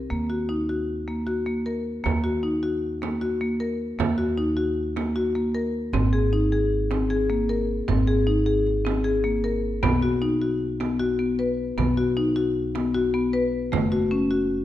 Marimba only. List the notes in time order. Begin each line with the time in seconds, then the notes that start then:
0.10 A#3
0.30 F#4
0.49 D#4
0.69 F#4
1.08 A#3
1.27 F#4
1.46 A#3
1.66 A#4
2.04 A#3
2.24 F#4
2.43 D#4
2.63 F#4
3.02 A#3
3.21 F#4
3.41 A#3
3.60 A#4
3.99 A#3
4.18 F#4
4.38 D#4
4.57 F#4
4.96 A#3
5.16 F#4
5.35 A#3
5.55 A#4
5.94 C4
6.13 G#4
6.33 D#4
6.52 G#4
6.91 C4
7.10 G#4
7.30 A#3
7.49 A#4
7.88 C4
8.07 G#4
8.27 D#4
8.46 G#4
8.85 C4
9.04 G#4
9.24 A#3
9.44 A#4
9.83 B3
10.02 F#4
10.22 D#4
10.42 F#4
10.80 B3
11.00 F#4
11.19 B3
11.39 B4
11.78 B3
11.97 F#4
12.17 D#4
12.36 F#4
12.75 B3
12.94 F#4
13.14 B3
13.33 B4
13.72 A3
13.92 F#4
14.11 C#4
14.31 F#4